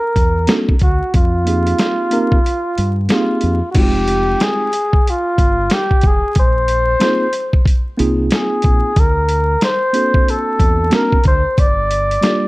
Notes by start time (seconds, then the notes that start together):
Already playing: A#4
0.16 E2, kick, closed hi-hat
0.47 A#3 C4 D4 F#4 A4, snare, closed hi-hat
0.69 kick
0.79 D2 F#4, kick, closed hi-hat
1.14 F2 F4, kick, closed hi-hat
1.45 A#3 C4 D#4 G4 G#4, closed hi-hat
1.67 closed hi-hat
1.79 snare, closed hi-hat
2.11 A#3 C4 D#4 G4 A#4, closed hi-hat
2.32 kick
2.46 closed hi-hat
2.78 G2, closed hi-hat
3.09 A#3 C4 D#4 F4 G4 G#4, snare, closed hi-hat
3.41 F2, closed hi-hat
3.71 G#3 C4 F#4, kick, closed hi-hat, crash
3.75 F1 D#4 F4 F#4 G4
3.83 G4
4.08 closed hi-hat
4.40 G#4, snare, closed hi-hat
4.73 closed hi-hat
4.93 kick
5.07 F4, closed hi-hat
5.38 G1, kick, closed hi-hat
5.70 G4, snare, closed hi-hat
5.91 kick
6.01 F1, kick, closed hi-hat
6.07 G#4
6.35 A#1, kick, closed hi-hat
6.40 C5
6.68 closed hi-hat
7.00 A#3 C4 D#4 F4 G#4, snare, closed hi-hat
7.33 closed hi-hat
7.53 kick
7.66 kick, closed hi-hat
7.97 C2 A#3 C4 D#4 F4 G#4, closed hi-hat
8.30 snare, closed hi-hat
8.35 G#4
8.62 A#1, kick, closed hi-hat
8.96 D2 A#4, kick, closed hi-hat
9.29 closed hi-hat
9.61 C5, snare, closed hi-hat
9.93 A#3 C4 D4 F#4 A4, closed hi-hat
10.14 kick
10.28 A4, closed hi-hat
10.60 E2, kick, closed hi-hat
10.90 A#3 C4 D4 F#4 A#4, snare, closed hi-hat
10.95 A#4
11.12 kick
11.24 D2 C5, kick, closed hi-hat
11.58 G1 D5, kick, closed hi-hat
11.91 closed hi-hat
12.11 closed hi-hat
12.21 G3 A#3 D4 F4 G4, snare, closed hi-hat